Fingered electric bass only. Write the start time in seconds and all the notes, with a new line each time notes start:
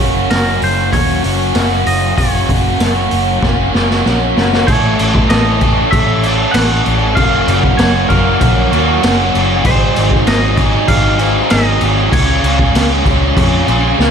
0.00 F#1
0.31 F#1
0.62 F#1
0.92 D#2
1.24 F#1
1.55 F#1
1.87 F#1
2.18 F#1
2.49 F#1
2.80 F#1
3.12 F#1
3.42 F#1
3.75 F#1
4.06 A#1
4.37 F#1
4.68 A1
4.99 A1
5.30 A1
5.93 A1
6.54 A1
6.86 A1
7.17 F#1
7.47 F#1
7.79 F#1
8.10 F#1
8.41 A#1
8.72 D#2
9.04 F#1
9.35 F#1
9.65 G#1
9.97 G#1
10.27 G#1
10.88 G#1
11.51 G#1
11.82 G#1
12.12 C#2
12.43 C#2
12.75 C#2
13.06 C#2
13.37 F2
13.68 A#1
13.99 C#2